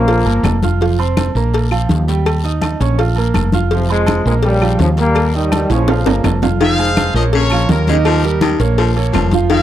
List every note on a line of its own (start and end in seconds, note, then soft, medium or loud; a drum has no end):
0.00 0.23 A#1 medium
0.00 0.59 F3 medium
0.00 0.59 A#3 loud
0.08 0.23 F4 medium
0.08 0.23 F5 medium
0.08 0.23 F6 medium
0.08 cowbell loud
0.08 high conga soft
0.08 low agogo medium
0.08 long guiro medium
0.25 0.42 G1 medium
0.25 0.55 A#3 medium
0.25 0.56 A#4 medium
0.25 0.56 A#5 medium
0.25 high conga soft
0.25 low agogo medium
0.43 1.29 F1 medium
0.43 cowbell medium
0.43 high conga medium
0.43 low timbale medium
0.43 low agogo loud
0.43 short guiro medium
0.43 claves medium
0.62 0.78 F4 medium
0.62 0.78 F5 medium
0.62 0.78 F6 medium
0.62 cowbell medium
0.62 high conga medium
0.62 short guiro medium
0.81 0.95 F3 medium
0.81 0.96 F4 medium
0.81 0.96 F5 medium
0.81 cowbell loud
0.81 high conga soft
0.81 long guiro medium
0.98 1.28 C4 medium
0.98 1.29 C5 medium
0.98 1.29 C6 medium
0.98 high conga soft
0.98 low agogo medium
1.17 cowbell medium
1.17 high conga loud
1.17 low agogo loud
1.17 short guiro medium
1.17 claves medium
1.35 1.86 A#1 medium
1.35 1.65 A#3 medium
1.35 1.65 A#4 medium
1.35 1.65 A#5 medium
1.35 high conga soft
1.35 short guiro medium
1.53 cowbell loud
1.53 high conga soft
1.53 low agogo medium
1.53 long guiro medium
1.71 2.01 F3 medium
1.71 2.01 F4 medium
1.71 2.01 F5 medium
1.71 high conga soft
1.71 low agogo loud
1.71 claves medium
1.89 2.74 D#2 loud
1.89 cowbell medium
1.89 high conga medium
1.89 short guiro medium
2.08 2.37 G3 medium
2.08 2.37 G4 medium
2.08 2.37 G5 medium
2.08 cowbell medium
2.08 low agogo medium
2.08 short guiro medium
2.26 cowbell loud
2.26 high conga soft
2.26 low agogo loud
2.26 long guiro medium
2.26 claves medium
2.44 2.73 D#4 medium
2.44 2.74 D#5 medium
2.44 2.74 D#6 medium
2.44 high conga soft
2.44 low agogo medium
2.62 cowbell medium
2.62 high conga medium
2.62 low agogo loud
2.62 short guiro medium
2.62 claves medium
2.80 3.31 A#1 medium
2.80 2.95 C#4 medium
2.80 2.95 C#5 medium
2.80 2.96 C#6 medium
2.80 cowbell medium
2.80 high conga soft
2.80 short guiro medium
2.98 3.13 F4 medium
2.98 3.13 F5 medium
2.98 3.14 F6 medium
2.98 cowbell loud
2.98 high conga soft
2.98 low agogo medium
2.98 long guiro medium
3.16 3.47 A#3 medium
3.16 3.47 A#4 medium
3.16 3.47 A#5 medium
3.16 high conga soft
3.16 low agogo medium
3.34 4.20 F1 loud
3.34 cowbell medium
3.34 high conga medium
3.34 low agogo loud
3.34 short guiro medium
3.34 claves medium
3.52 3.68 F4 medium
3.52 3.68 F5 medium
3.52 3.68 F6 medium
3.52 cowbell medium
3.52 high conga medium
3.52 short guiro medium
3.71 3.89 C3 medium
3.71 3.86 F3 medium
3.71 3.88 F3 medium
3.71 3.86 F4 medium
3.71 3.87 F5 medium
3.71 cowbell loud
3.71 high conga soft
3.71 long guiro medium
3.89 4.24 F3 medium
3.89 4.24 G#3 loud
3.89 4.19 C4 medium
3.89 4.19 C5 medium
3.89 4.19 C6 medium
3.89 high conga soft
3.89 low agogo medium
4.06 cowbell medium
4.06 high conga loud
4.06 low agogo loud
4.06 short guiro medium
4.06 claves medium
4.25 4.76 A#1 loud
4.25 4.35 F3 medium
4.25 4.33 G#3 medium
4.25 4.55 A#3 medium
4.25 4.56 A#4 medium
4.25 4.56 A#5 medium
4.25 high conga soft
4.25 short guiro medium
4.43 4.78 C#3 medium
4.43 4.77 G3 loud
4.43 cowbell loud
4.43 high conga soft
4.43 low agogo medium
4.43 long guiro medium
4.61 4.91 F3 medium
4.61 4.92 F4 medium
4.61 4.92 F5 medium
4.61 high conga soft
4.61 low agogo loud
4.61 claves medium
4.79 5.64 D#2 loud
4.79 4.89 C#3 medium
4.79 4.89 F3 medium
4.79 cowbell medium
4.79 high conga medium
4.79 low timbale medium
4.79 short guiro medium
4.97 5.28 G3 medium
4.97 5.32 G3 medium
4.97 5.32 A#3 loud
4.97 5.28 G4 medium
4.97 5.28 G5 medium
4.97 cowbell medium
4.97 low agogo medium
4.97 short guiro medium
5.15 cowbell loud
5.15 high conga soft
5.15 low agogo loud
5.15 long guiro medium
5.15 claves medium
5.34 5.51 D#3 medium
5.34 5.51 G3 medium
5.34 5.64 D#4 medium
5.34 5.64 D#5 medium
5.34 5.64 D#6 medium
5.34 high conga soft
5.34 low agogo medium
5.52 5.70 D#3 medium
5.52 5.70 G3 medium
5.52 cowbell medium
5.52 high conga loud
5.52 low agogo loud
5.52 short guiro medium
5.52 claves medium
5.70 6.04 A#1 medium
5.70 6.39 C#3 medium
5.70 6.40 F3 medium
5.70 5.86 C#4 medium
5.70 5.86 C#5 medium
5.70 5.86 C#6 medium
5.70 cowbell medium
5.70 high conga soft
5.70 high timbale medium
5.70 short guiro medium
5.88 6.03 F4 medium
5.88 6.04 F5 medium
5.88 6.04 F6 medium
5.88 cowbell loud
5.88 high bongo medium
5.88 low timbale loud
5.88 low agogo medium
5.88 long guiro medium
6.06 6.23 G1 medium
6.06 6.36 A#3 medium
6.06 6.36 A#4 medium
6.06 6.36 A#5 medium
6.06 high bongo loud
6.06 high conga soft
6.06 low timbale loud
6.06 low agogo medium
6.24 7.09 F1 loud
6.24 cowbell medium
6.24 low bongo medium
6.24 high conga medium
6.24 low timbale loud
6.24 low agogo loud
6.24 short guiro medium
6.24 claves medium
6.42 6.57 F4 medium
6.42 6.58 F5 medium
6.42 6.58 F6 medium
6.42 cowbell medium
6.42 low bongo medium
6.42 high conga medium
6.42 low timbale medium
6.42 short guiro medium
6.60 6.91 D#3 loud
6.60 6.75 F3 medium
6.60 6.76 F4 medium
6.60 7.30 G#4 medium
6.60 7.30 C5 medium
6.60 6.76 F5 medium
6.60 7.12 F5 loud
6.60 cowbell loud
6.60 high conga soft
6.60 long guiro medium
6.78 7.08 G#3 medium
6.78 7.09 G#4 medium
6.78 7.09 C5 medium
6.78 high conga soft
6.78 low agogo medium
6.97 cowbell medium
6.97 high conga loud
6.97 low agogo loud
6.97 short guiro medium
6.97 claves medium
7.14 7.65 A#1 medium
7.14 7.25 F3 medium
7.14 7.45 A#3 medium
7.14 7.45 A#4 medium
7.14 7.45 C#5 medium
7.14 7.23 D#5 loud
7.14 high conga soft
7.14 short guiro medium
7.33 7.64 C#3 medium
7.33 8.02 F4 medium
7.33 7.69 A#4 medium
7.33 7.68 C#5 loud
7.33 cowbell loud
7.33 high conga soft
7.33 low agogo medium
7.33 long guiro medium
7.50 7.67 F3 medium
7.50 7.67 F4 loud
7.50 7.67 F5 loud
7.50 high conga soft
7.50 low agogo loud
7.50 claves medium
7.69 8.54 D#2 loud
7.69 7.85 A#3 medium
7.69 7.87 A#4 medium
7.69 7.85 A#4 medium
7.69 7.85 C#5 medium
7.69 cowbell medium
7.69 high conga medium
7.69 low timbale medium
7.69 short guiro medium
7.87 7.98 C#3 medium
7.87 8.18 D#3 loud
7.87 8.18 D#4 loud
7.87 8.57 D#4 medium
7.87 8.57 G4 medium
7.87 8.58 A#4 medium
7.87 8.19 D#5 loud
7.87 cowbell medium
7.87 high conga medium
7.87 low agogo medium
7.87 short guiro medium
8.05 8.25 F3 loud
8.05 cowbell loud
8.05 high conga soft
8.05 low agogo loud
8.05 long guiro medium
8.05 claves medium
8.23 8.54 G3 medium
8.23 8.54 G4 medium
8.23 8.54 A#4 medium
8.23 high conga soft
8.23 low agogo medium
8.41 8.61 D#3 medium
8.41 cowbell medium
8.41 high conga loud
8.41 low agogo loud
8.41 short guiro medium
8.41 claves medium
8.59 9.10 A#1 medium
8.59 8.89 A#3 medium
8.59 8.90 A#4 medium
8.59 8.90 C#5 medium
8.59 cowbell medium
8.59 short guiro medium
8.78 8.97 F3 medium
8.78 cowbell loud
8.78 high conga soft
8.78 low agogo medium
8.78 long guiro medium
8.96 9.26 A#3 medium
8.96 9.26 A#4 medium
8.96 9.26 C#5 medium
8.96 high conga soft
8.96 low agogo medium
9.13 9.62 F1 loud
9.13 9.32 F3 medium
9.13 cowbell medium
9.13 high conga medium
9.13 low timbale medium
9.13 low agogo loud
9.13 short guiro medium
9.13 claves medium
9.31 9.48 F3 loud
9.31 9.48 F4 loud
9.31 9.48 F5 loud
9.31 cowbell medium
9.31 high conga medium
9.31 short guiro medium
9.50 9.62 D#3 loud
9.50 9.62 F3 medium
9.50 9.62 F4 medium
9.50 9.62 G#4 medium
9.50 9.62 C5 medium
9.50 9.62 F5 loud
9.50 9.62 F5 medium
9.50 cowbell loud
9.50 high conga soft
9.50 long guiro medium